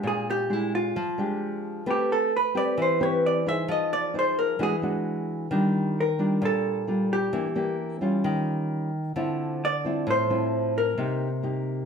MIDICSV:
0, 0, Header, 1, 3, 480
1, 0, Start_track
1, 0, Tempo, 455927
1, 41, Time_signature, 4, 2, 24, 8
1, 12479, End_track
2, 0, Start_track
2, 0, Title_t, "Hollow-body jazz guitar"
2, 0, Program_c, 0, 26
2, 77, Note_on_c, 0, 68, 70
2, 292, Note_off_c, 0, 68, 0
2, 321, Note_on_c, 0, 67, 92
2, 557, Note_off_c, 0, 67, 0
2, 557, Note_on_c, 0, 64, 80
2, 772, Note_off_c, 0, 64, 0
2, 789, Note_on_c, 0, 65, 76
2, 1222, Note_off_c, 0, 65, 0
2, 2006, Note_on_c, 0, 67, 70
2, 2216, Note_off_c, 0, 67, 0
2, 2234, Note_on_c, 0, 69, 77
2, 2450, Note_off_c, 0, 69, 0
2, 2490, Note_on_c, 0, 71, 79
2, 2698, Note_off_c, 0, 71, 0
2, 2709, Note_on_c, 0, 74, 88
2, 2928, Note_off_c, 0, 74, 0
2, 2968, Note_on_c, 0, 72, 74
2, 3178, Note_off_c, 0, 72, 0
2, 3189, Note_on_c, 0, 73, 76
2, 3408, Note_off_c, 0, 73, 0
2, 3436, Note_on_c, 0, 74, 86
2, 3651, Note_off_c, 0, 74, 0
2, 3669, Note_on_c, 0, 76, 101
2, 3887, Note_off_c, 0, 76, 0
2, 3911, Note_on_c, 0, 75, 87
2, 4129, Note_off_c, 0, 75, 0
2, 4137, Note_on_c, 0, 74, 102
2, 4361, Note_off_c, 0, 74, 0
2, 4408, Note_on_c, 0, 72, 92
2, 4617, Note_off_c, 0, 72, 0
2, 4618, Note_on_c, 0, 70, 83
2, 4842, Note_off_c, 0, 70, 0
2, 4873, Note_on_c, 0, 68, 97
2, 5007, Note_off_c, 0, 68, 0
2, 6322, Note_on_c, 0, 70, 73
2, 6749, Note_off_c, 0, 70, 0
2, 6794, Note_on_c, 0, 69, 84
2, 7455, Note_off_c, 0, 69, 0
2, 7505, Note_on_c, 0, 67, 85
2, 8170, Note_off_c, 0, 67, 0
2, 10157, Note_on_c, 0, 74, 98
2, 10586, Note_off_c, 0, 74, 0
2, 10638, Note_on_c, 0, 72, 91
2, 11297, Note_off_c, 0, 72, 0
2, 11347, Note_on_c, 0, 70, 83
2, 12011, Note_off_c, 0, 70, 0
2, 12479, End_track
3, 0, Start_track
3, 0, Title_t, "Nylon-string guitar"
3, 0, Program_c, 1, 24
3, 0, Note_on_c, 1, 56, 60
3, 0, Note_on_c, 1, 62, 53
3, 0, Note_on_c, 1, 67, 65
3, 36, Note_on_c, 1, 46, 69
3, 480, Note_off_c, 1, 56, 0
3, 481, Note_off_c, 1, 62, 0
3, 483, Note_off_c, 1, 67, 0
3, 523, Note_on_c, 1, 56, 62
3, 524, Note_on_c, 1, 62, 51
3, 529, Note_on_c, 1, 67, 53
3, 974, Note_off_c, 1, 46, 0
3, 999, Note_off_c, 1, 56, 0
3, 999, Note_off_c, 1, 62, 0
3, 1000, Note_off_c, 1, 67, 0
3, 1013, Note_on_c, 1, 53, 79
3, 1241, Note_on_c, 1, 56, 60
3, 1250, Note_on_c, 1, 62, 60
3, 1256, Note_on_c, 1, 67, 73
3, 1922, Note_off_c, 1, 56, 0
3, 1927, Note_off_c, 1, 62, 0
3, 1929, Note_off_c, 1, 67, 0
3, 1942, Note_off_c, 1, 53, 0
3, 1961, Note_on_c, 1, 57, 66
3, 1964, Note_on_c, 1, 60, 56
3, 1968, Note_on_c, 1, 67, 65
3, 1968, Note_on_c, 1, 71, 59
3, 2438, Note_off_c, 1, 60, 0
3, 2439, Note_off_c, 1, 67, 0
3, 2441, Note_off_c, 1, 71, 0
3, 2680, Note_on_c, 1, 60, 63
3, 2685, Note_on_c, 1, 67, 67
3, 2691, Note_on_c, 1, 71, 60
3, 2897, Note_off_c, 1, 57, 0
3, 2921, Note_on_c, 1, 52, 82
3, 3122, Note_off_c, 1, 60, 0
3, 3125, Note_off_c, 1, 67, 0
3, 3126, Note_off_c, 1, 71, 0
3, 3158, Note_on_c, 1, 60, 69
3, 3167, Note_on_c, 1, 67, 67
3, 3168, Note_on_c, 1, 71, 72
3, 3601, Note_off_c, 1, 60, 0
3, 3605, Note_off_c, 1, 71, 0
3, 3606, Note_off_c, 1, 67, 0
3, 3645, Note_on_c, 1, 63, 55
3, 3650, Note_on_c, 1, 68, 65
3, 3656, Note_on_c, 1, 72, 60
3, 3856, Note_off_c, 1, 52, 0
3, 3878, Note_on_c, 1, 53, 71
3, 4324, Note_off_c, 1, 63, 0
3, 4326, Note_off_c, 1, 68, 0
3, 4330, Note_off_c, 1, 72, 0
3, 4357, Note_on_c, 1, 63, 50
3, 4362, Note_on_c, 1, 68, 55
3, 4369, Note_on_c, 1, 72, 54
3, 4815, Note_off_c, 1, 53, 0
3, 4819, Note_off_c, 1, 63, 0
3, 4823, Note_off_c, 1, 68, 0
3, 4824, Note_off_c, 1, 72, 0
3, 4834, Note_on_c, 1, 52, 79
3, 4834, Note_on_c, 1, 56, 66
3, 4842, Note_on_c, 1, 62, 68
3, 4847, Note_on_c, 1, 66, 71
3, 4978, Note_off_c, 1, 56, 0
3, 4980, Note_off_c, 1, 62, 0
3, 4980, Note_off_c, 1, 66, 0
3, 5075, Note_on_c, 1, 56, 61
3, 5087, Note_on_c, 1, 62, 62
3, 5088, Note_on_c, 1, 66, 69
3, 5759, Note_off_c, 1, 56, 0
3, 5764, Note_off_c, 1, 66, 0
3, 5765, Note_off_c, 1, 62, 0
3, 5774, Note_off_c, 1, 52, 0
3, 5799, Note_on_c, 1, 51, 75
3, 5806, Note_on_c, 1, 55, 58
3, 5811, Note_on_c, 1, 62, 63
3, 5815, Note_on_c, 1, 65, 62
3, 6278, Note_off_c, 1, 55, 0
3, 6282, Note_off_c, 1, 62, 0
3, 6283, Note_off_c, 1, 65, 0
3, 6513, Note_on_c, 1, 55, 59
3, 6519, Note_on_c, 1, 62, 69
3, 6525, Note_on_c, 1, 65, 70
3, 6735, Note_off_c, 1, 51, 0
3, 6755, Note_on_c, 1, 46, 78
3, 7198, Note_off_c, 1, 55, 0
3, 7201, Note_off_c, 1, 62, 0
3, 7203, Note_off_c, 1, 65, 0
3, 7238, Note_on_c, 1, 55, 49
3, 7242, Note_on_c, 1, 62, 52
3, 7247, Note_on_c, 1, 65, 66
3, 7693, Note_off_c, 1, 46, 0
3, 7699, Note_off_c, 1, 55, 0
3, 7702, Note_off_c, 1, 62, 0
3, 7702, Note_off_c, 1, 65, 0
3, 7714, Note_on_c, 1, 58, 50
3, 7715, Note_on_c, 1, 52, 72
3, 7718, Note_on_c, 1, 62, 53
3, 7724, Note_on_c, 1, 67, 64
3, 7857, Note_off_c, 1, 58, 0
3, 7861, Note_off_c, 1, 62, 0
3, 7861, Note_off_c, 1, 67, 0
3, 7953, Note_on_c, 1, 58, 65
3, 7959, Note_on_c, 1, 62, 70
3, 7963, Note_on_c, 1, 67, 60
3, 8398, Note_off_c, 1, 58, 0
3, 8401, Note_off_c, 1, 62, 0
3, 8402, Note_off_c, 1, 67, 0
3, 8432, Note_on_c, 1, 55, 53
3, 8438, Note_on_c, 1, 61, 65
3, 8443, Note_on_c, 1, 65, 69
3, 8654, Note_off_c, 1, 52, 0
3, 8678, Note_on_c, 1, 51, 77
3, 9357, Note_off_c, 1, 55, 0
3, 9360, Note_off_c, 1, 61, 0
3, 9363, Note_off_c, 1, 65, 0
3, 9615, Note_off_c, 1, 51, 0
3, 9641, Note_on_c, 1, 50, 73
3, 9642, Note_on_c, 1, 53, 62
3, 9648, Note_on_c, 1, 60, 54
3, 9653, Note_on_c, 1, 64, 66
3, 10118, Note_off_c, 1, 53, 0
3, 10121, Note_off_c, 1, 60, 0
3, 10123, Note_off_c, 1, 64, 0
3, 10366, Note_on_c, 1, 53, 58
3, 10376, Note_on_c, 1, 60, 59
3, 10381, Note_on_c, 1, 64, 71
3, 10577, Note_off_c, 1, 50, 0
3, 10598, Note_on_c, 1, 45, 84
3, 10804, Note_off_c, 1, 53, 0
3, 10810, Note_off_c, 1, 60, 0
3, 10812, Note_off_c, 1, 64, 0
3, 10841, Note_on_c, 1, 53, 64
3, 10848, Note_on_c, 1, 60, 61
3, 10850, Note_on_c, 1, 64, 70
3, 11522, Note_off_c, 1, 53, 0
3, 11526, Note_off_c, 1, 60, 0
3, 11526, Note_off_c, 1, 64, 0
3, 11535, Note_off_c, 1, 45, 0
3, 11555, Note_on_c, 1, 48, 65
3, 11558, Note_on_c, 1, 58, 54
3, 11564, Note_on_c, 1, 63, 54
3, 11569, Note_on_c, 1, 67, 58
3, 11867, Note_off_c, 1, 58, 0
3, 11871, Note_off_c, 1, 63, 0
3, 11873, Note_off_c, 1, 67, 0
3, 12030, Note_on_c, 1, 58, 48
3, 12038, Note_on_c, 1, 63, 57
3, 12040, Note_on_c, 1, 67, 60
3, 12479, Note_off_c, 1, 48, 0
3, 12479, Note_off_c, 1, 58, 0
3, 12479, Note_off_c, 1, 63, 0
3, 12479, Note_off_c, 1, 67, 0
3, 12479, End_track
0, 0, End_of_file